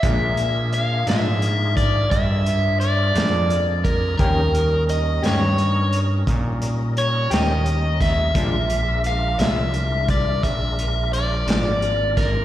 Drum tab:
HH |xxxxxxxxxxxx|xxxxxxxxxxxx|xxxxxxxxxxxx|
SD |---o-----o--|---o-----o-o|---o-----o-o|
BD |o----oo----o|o-----o----o|o----oo----o|